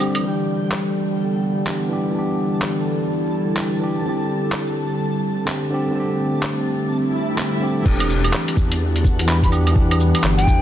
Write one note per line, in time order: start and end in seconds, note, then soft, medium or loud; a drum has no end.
0.00 0.26 D3 medium
0.00 7.85 D3 medium
0.00 7.85 G3 medium
0.00 0.23 A3 medium
0.00 0.24 C4 medium
0.00 0.26 C4 medium
0.00 0.02 G4 medium
0.00 0.24 G4 medium
0.00 7.85 G4 medium
0.00 0.22 G4 loud
0.00 0.24 G5 medium
0.00 cabasa medium
0.00 claves soft
0.15 closed hi-hat medium
0.15 claves medium
0.20 1.62 E3 medium
0.20 1.64 D4 medium
0.24 1.66 G4 medium
0.24 7.87 A4 medium
0.24 7.87 A5 medium
0.40 4.05 B3 medium
0.71 clap medium
1.65 1.80 E3 medium
1.65 1.81 D4 medium
1.65 1.82 G4 medium
1.65 clap medium
1.89 2.09 E3 medium
1.89 2.12 D4 medium
1.89 5.59 E4 medium
1.93 2.13 G4 medium
2.10 3.53 E3 medium
2.15 3.55 D4 medium
2.15 3.57 G4 medium
2.62 clap medium
3.55 3.70 E3 medium
3.55 3.71 D4 medium
3.55 clap loud
3.59 3.72 G4 medium
3.80 4.02 E3 medium
3.80 4.03 D4 medium
3.80 4.04 G4 medium
4.01 5.43 D3 medium
4.05 5.45 C4 medium
4.09 5.47 G4 medium
4.52 clap medium
4.89 7.86 A3 medium
4.94 7.85 C4 medium
5.45 5.60 D3 medium
5.45 5.61 C4 medium
5.45 clap medium
5.49 5.62 G4 medium
5.70 5.90 D3 medium
5.70 5.93 C4 medium
5.70 5.94 G4 medium
5.91 7.34 D3 medium
5.95 7.36 C4 medium
6.00 7.38 G4 medium
6.43 clap medium
6.90 swell medium
7.36 7.51 D3 medium
7.36 7.53 G4 medium
7.36 clap loud
7.59 7.82 D3 medium
7.59 7.83 C4 medium
7.63 7.84 G4 medium
7.82 8.32 E1 loud
7.82 9.24 E3 medium
7.82 10.62 E3 medium
7.82 9.26 D4 medium
7.82 10.62 F#4 medium
7.82 10.62 F#5 medium
7.82 kick loud
7.82 crash loud
7.90 9.28 G4 medium
8.00 closed hi-hat soft
8.00 claves medium
8.10 10.62 G3 medium
8.10 cabasa medium
8.21 10.62 E4 medium
8.21 closed hi-hat medium
8.21 claves medium
8.33 clap loud
8.39 10.62 B3 medium
8.48 closed hi-hat soft
8.57 10.12 E2 medium
8.57 kick loud
8.57 cabasa medium
8.72 closed hi-hat medium
8.83 10.62 D4 medium
8.96 closed hi-hat soft
9.04 kick loud
9.04 cabasa medium
9.19 closed hi-hat medium
9.26 9.41 E3 medium
9.26 9.42 D4 medium
9.26 9.38 B5 medium
9.26 clap loud
9.30 9.43 G4 medium
9.43 9.49 B5 medium
9.43 kick medium
9.43 closed hi-hat soft
9.49 9.70 E3 medium
9.49 9.73 D4 medium
9.49 9.74 G4 medium
9.49 cabasa medium
9.49 claves soft
9.67 closed hi-hat medium
9.67 claves medium
9.71 10.62 E3 medium
9.71 10.62 D4 medium
9.76 10.62 G4 medium
9.76 kick loud
9.91 closed hi-hat soft
9.91 claves medium
10.00 cabasa medium
10.15 closed hi-hat medium
10.15 claves medium
10.23 10.46 G1 medium
10.23 clap loud
10.37 10.62 G5 loud
10.37 closed hi-hat soft
10.47 10.62 E2 medium
10.47 kick loud
10.47 cabasa medium